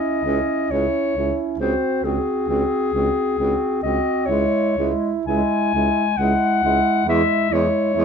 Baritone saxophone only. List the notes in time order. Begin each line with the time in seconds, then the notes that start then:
0.24 C#2
0.70 C#2
1.15 C#2
1.58 C#2
2.03 C#2
2.48 C#2
2.93 C#2
3.38 C#2
3.83 C#2
4.28 C#2
4.77 C#2
5.25 C#2
5.73 C#2
6.18 C#2
6.63 C#2
7.06 E2
7.51 E2
7.96 E2